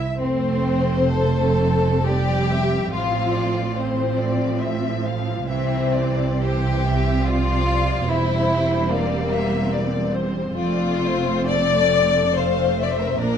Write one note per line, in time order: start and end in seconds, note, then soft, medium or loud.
0.00 0.17 E5 medium
0.18 2.87 F1 medium
0.18 2.88 F2 medium
0.18 1.13 A3 medium
0.18 1.12 C4 medium
0.18 1.13 C4 medium
0.18 2.01 C5 medium
1.17 2.05 A3 medium
1.17 2.89 C4 soft
1.17 2.06 A4 medium
2.05 2.89 G3 soft
2.05 2.91 G4 medium
2.05 2.49 D5 medium
2.50 2.92 E5 medium
2.91 5.43 A1 medium
2.91 5.43 A2 soft
2.91 3.73 F3 medium
2.91 3.73 C4 medium
2.91 3.74 F4 medium
2.91 3.32 F5 medium
3.33 3.75 D5 medium
3.75 5.43 F3 soft
3.75 5.43 C4 soft
3.75 5.04 C4 medium
3.75 4.18 C5 medium
4.16 4.60 D5 medium
4.60 5.03 E5 medium
5.03 5.46 F5 medium
5.47 8.04 C2 medium
5.47 8.04 C3 medium
5.47 6.38 E3 medium
5.47 6.38 C4 soft
5.47 6.36 C4 medium
5.47 5.92 E5 medium
5.93 6.39 D5 medium
6.39 7.22 E3 soft
6.39 8.05 C4 soft
6.39 7.24 G4 medium
6.39 6.83 C5 medium
6.82 7.24 E5 medium
7.23 8.06 F3 soft
7.23 8.08 F4 medium
7.23 8.08 D5 medium
8.08 10.55 E1 medium
8.08 10.55 E2 medium
8.08 10.55 G3 medium
8.08 10.51 C4 soft
8.08 8.91 E4 medium
8.08 8.90 C5 medium
8.90 10.12 A#3 medium
8.90 9.31 D5 medium
9.31 9.71 E5 medium
9.73 10.13 D5 medium
10.13 10.55 C5 medium
10.55 13.15 F1 medium
10.55 13.14 F2 medium
10.55 12.30 A3 medium
10.55 12.30 C4 medium
10.55 11.44 F4 medium
10.55 11.00 D5 medium
11.03 11.48 C5 medium
11.48 12.34 A4 medium
11.48 12.34 D5 medium
12.35 13.17 A3 soft
12.35 13.17 C4 soft
12.35 12.83 C5 medium
12.35 12.76 F5 medium
12.78 13.18 E5 medium
12.82 12.91 D5 medium
12.94 13.01 C5 medium
13.01 13.09 A#4 medium
13.10 13.18 C5 medium
13.18 13.38 A#1 medium
13.18 13.38 A#2 medium
13.18 13.38 A#3 medium
13.18 13.38 D4 medium
13.18 13.38 A#4 medium
13.18 13.38 D5 medium